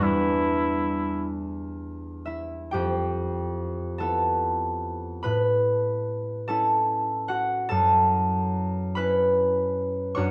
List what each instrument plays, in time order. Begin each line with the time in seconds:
0.00 harp E2 G3 B3 D4 E4, cor anglais E4
2.25 harp E4 E5
2.71 harp F2 G4 G5
3.98 harp B3 E4 A4 A5
5.23 harp A2 B4 B5
6.48 harp C#4 E4 A4 A5
7.28 harp F#4 F#5
7.69 harp F#2 A4 A5
8.95 harp C#4 E4 B4 B5
10.15 harp F#2 D4 F#4 C#5 C#6